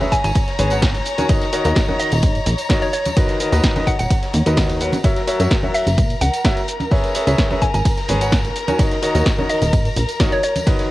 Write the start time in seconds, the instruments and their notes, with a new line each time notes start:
Already playing: violin section C#5 A#5
0.01 grand piano C#4 G#4 B4 C#5 E5, snare, tambourine, high conga
0.12 synth pluck G#5, kick, closed hi-hat, open hi-hat, shaker
0.24 analog synth bass G#1, synth pluck G#5, closed hi-hat, tambourine, shaker
0.35 kick, closed hi-hat, ride, tambourine, shaker
0.48 snare, closed hi-hat, tambourine
0.59 analog synth bass G#1, grand piano C#4 G#4 B4 C#5 G#5, closed hi-hat, open hi-hat, high conga, shaker
0.70 grand piano C#4 G#4 B4 C#5 F#5, closed hi-hat, tambourine, shaker
0.82 kick, snare, closed hi-hat, ride, tambourine, shaker
0.95 snare, closed hi-hat, tambourine
1.05 closed hi-hat, open hi-hat, shaker
1.18 grand piano D#3 F#4 A#4 C#5 G#5, closed hi-hat, tambourine, high conga, shaker
1.29 grand piano D#3 F#4 A#4 C#5 D#5, kick, closed hi-hat, ride, tambourine, shaker
1.41 snare, closed hi-hat, tambourine
1.53 grand piano D#3 F#4 A#4 C#5 D#5, closed hi-hat, open hi-hat, shaker
1.64 analog synth bass D#2, grand piano D#3 F#4 A#4 C#5 D#5, snare, closed hi-hat, tambourine, shaker
1.75 kick, snare, closed hi-hat, ride, tambourine, shaker
1.88 grand piano D#3 F#4 A#4 C#5 D#5, tambourine, high conga
1.99 synth pluck D#5, open hi-hat, shaker
2.12 analog synth bass D#1, closed hi-hat, tambourine, shaker
2.22 analog synth bass G#2, kick, closed hi-hat, ride, tambourine, shaker
2.35 closed hi-hat, tambourine
2.46 analog synth bass A#1, closed hi-hat, open hi-hat, high conga, shaker
2.58 closed hi-hat, tambourine, shaker
2.69 grand piano D#3 F#4 A#4 C#5 D#5, kick, snare, closed hi-hat, ride, tambourine, shaker
2.82 synth pluck C#5, closed hi-hat, tambourine
2.93 synth pluck C#5, closed hi-hat, open hi-hat, shaker
3.05 closed hi-hat, tambourine, high conga, shaker
3.17 grand piano D#3 F#4 A#4 B4 D#5, kick, closed hi-hat, ride, tambourine, shaker
3.28 snare, closed hi-hat, tambourine
3.40 grand piano D#3 F#4 A#4 B4 D#5, open hi-hat, shaker
3.52 analog synth bass D#2, grand piano D#3 F#4 A#4 B4 D#5, closed hi-hat, tambourine, shaker
3.63 kick, snare, closed hi-hat, ride, tambourine, shaker
3.75 grand piano D#3 F#4 A#4 B4 D#5, snare, closed hi-hat, tambourine, high conga
3.87 synth pluck F#5, kick, closed hi-hat, open hi-hat, shaker
3.99 analog synth bass D#1, synth pluck F#5, closed hi-hat, tambourine, shaker
4.10 kick, closed hi-hat, ride, tambourine, shaker
4.22 snare, closed hi-hat, tambourine
4.33 analog synth bass D#2, closed hi-hat, open hi-hat, high conga, shaker
4.46 analog synth bass D#2, grand piano D#3 F#4 A#4 B4 D#5, closed hi-hat, tambourine, shaker
4.57 kick, snare, closed hi-hat, ride, tambourine, shaker
4.69 snare, closed hi-hat, tambourine
4.81 grand piano F#3 F#4 A#4 B4 F#5, closed hi-hat, open hi-hat, shaker
4.93 closed hi-hat, tambourine, high conga, shaker
5.04 grand piano F#3 F#4 A#4 C#5 E5, violin section A#4 A#5, kick, closed hi-hat, ride, tambourine, shaker
5.16 snare, closed hi-hat, tambourine
5.27 grand piano F#3 F#4 A#4 C#5 E5, closed hi-hat, open hi-hat, shaker
5.40 analog synth bass F#2, grand piano F#3 F#4 A#4 C#5 E5, snare, closed hi-hat, tambourine, shaker
5.51 kick, snare, closed hi-hat, ride, tambourine, shaker
5.63 grand piano F#3 F#4 A#4 C#5 E5, tambourine, high conga
5.74 synth pluck E5, open hi-hat, shaker
5.87 analog synth bass F#1, closed hi-hat, tambourine, shaker
5.98 analog synth bass A#2, kick, closed hi-hat, ride, tambourine, shaker
6.10 closed hi-hat, tambourine
6.21 analog synth bass C#2, synth pluck F#5, closed hi-hat, open hi-hat, high conga, shaker
6.34 closed hi-hat, tambourine, shaker
6.45 grand piano F#4 A#4 C#5 E5, kick, snare, closed hi-hat, ride, tambourine, shaker
6.57 closed hi-hat, tambourine
6.68 closed hi-hat, open hi-hat, shaker
6.80 closed hi-hat, tambourine, high conga, shaker
6.91 grand piano C#4 G#4 B4 C#5 E5, kick, closed hi-hat, ride, tambourine, shaker
7.04 snare, closed hi-hat, tambourine
7.15 grand piano C#4 G#4 B4 C#5 E5, closed hi-hat, open hi-hat, shaker
7.27 analog synth bass C#2, grand piano C#4 G#4 B4 C#5 E5, snare, closed hi-hat, tambourine, shaker
7.38 kick, snare, closed hi-hat, ride, tambourine, shaker
7.50 grand piano C#4 G#4 B4 C#5 E5, snare, tambourine, high conga
7.62 synth pluck G#5, kick, closed hi-hat, open hi-hat, shaker
7.74 analog synth bass G#1, synth pluck G#5, closed hi-hat, tambourine, shaker
7.85 kick, closed hi-hat, ride, tambourine, shaker
7.97 snare, closed hi-hat, tambourine
8.08 analog synth bass G#1, grand piano C#4 G#4 B4 C#5 G#5, closed hi-hat, open hi-hat, high conga, shaker
8.21 grand piano C#4 G#4 B4 C#5 F#5, closed hi-hat, tambourine, shaker
8.32 kick, snare, closed hi-hat, ride, tambourine, shaker
8.45 snare, closed hi-hat, tambourine
8.56 closed hi-hat, open hi-hat, shaker
8.68 grand piano D#3 F#4 A#4 C#5 G#5, closed hi-hat, tambourine, high conga, shaker
8.79 grand piano D#3 F#4 A#4 C#5 D#5, kick, closed hi-hat, ride, tambourine, shaker
8.91 snare, closed hi-hat, tambourine
9.02 grand piano D#3 F#4 A#4 C#5 D#5, closed hi-hat, open hi-hat, shaker
9.14 analog synth bass D#2, grand piano D#3 F#4 A#4 C#5 D#5, snare, closed hi-hat, tambourine, shaker
9.26 kick, snare, closed hi-hat, ride, tambourine, shaker
9.38 grand piano D#3 F#4 A#4 C#5 D#5, tambourine, high conga
9.49 synth pluck D#5, open hi-hat, shaker
9.62 analog synth bass D#1, closed hi-hat, tambourine, shaker
9.73 analog synth bass G#2, kick, closed hi-hat, ride, tambourine, shaker
9.85 closed hi-hat, tambourine
9.96 analog synth bass A#1, closed hi-hat, open hi-hat, high conga, shaker
10.08 closed hi-hat, tambourine, shaker
10.19 grand piano D#3 F#4 A#4 C#5 D#5, kick, snare, closed hi-hat, ride, tambourine, shaker
10.32 synth pluck C#5, closed hi-hat, tambourine
10.43 synth pluck C#5, closed hi-hat, open hi-hat, shaker
10.55 closed hi-hat, tambourine, high conga, shaker
10.66 grand piano D#3 F#4 A#4 B4 D#5, kick, closed hi-hat, ride, tambourine, shaker
10.79 snare, closed hi-hat, tambourine